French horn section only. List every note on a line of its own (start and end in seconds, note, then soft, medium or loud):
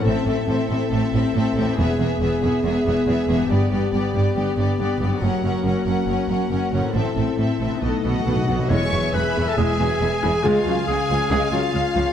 0.03 1.73 C4 medium
0.03 1.73 A4 medium
1.79 5.23 B3 medium
1.79 3.35 G#4 medium
3.52 5.20 G4 medium
5.21 6.91 A#3 medium
5.21 6.91 F#4 medium
6.94 7.80 C4 medium
6.94 7.80 E4 soft
7.83 8.49 A3 soft
7.83 8.49 D#4 soft
8.68 8.84 G#3 medium
8.68 8.84 E4 medium
9.57 9.73 G#3 medium
9.57 9.73 E4 medium
10.43 10.59 G#3 medium
10.43 10.59 G#4 medium
11.29 11.45 G#3 medium
11.29 11.45 G#4 medium